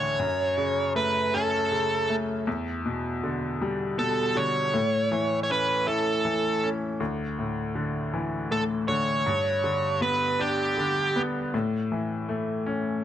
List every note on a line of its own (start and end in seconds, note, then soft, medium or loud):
0.00 0.16 D2 soft
0.00 0.23 A2 soft
0.00 0.23 D3 soft
0.00 0.17 E3 soft
0.00 0.93 C#5 medium
0.19 2.43 F#2 medium
0.58 1.70 C#3 soft
0.95 2.08 A3 soft
0.95 1.35 B4 medium
1.34 2.44 C#4 soft
1.34 2.15 A4 medium
1.71 2.45 C#3 soft
2.09 2.46 A3 soft
2.47 4.70 E2 medium
2.86 3.97 B2 soft
3.24 4.34 D3 soft
3.61 4.71 G3 soft
3.99 4.72 B2 soft
3.99 4.37 A4 medium
4.35 4.72 D3 soft
4.35 5.39 C#5 medium
4.74 6.96 A2 medium
5.12 6.23 E3 soft
5.43 5.50 C#5 medium
5.50 6.62 C#4 soft
5.50 5.86 B4 medium
5.87 6.97 E4 soft
5.87 6.68 A4 medium
6.25 6.98 E3 soft
6.63 6.99 C#4 soft
7.00 9.23 D2 soft
7.39 8.50 A2 soft
7.75 8.87 D3 soft
8.14 9.23 E3 soft
8.51 9.24 A2 soft
8.51 8.62 A4 medium
8.88 9.26 D3 soft
8.88 10.02 C#5 medium
9.26 11.49 G2 medium
9.64 10.76 D3 soft
10.01 11.15 B3 soft
10.01 10.41 B4 medium
10.39 11.49 D4 soft
10.39 11.21 G4 medium
10.77 11.51 D3 soft
11.16 11.52 B3 soft
11.54 13.04 A2 medium
11.92 13.03 E3 soft
12.29 13.04 A3 soft
12.66 13.04 C#4 soft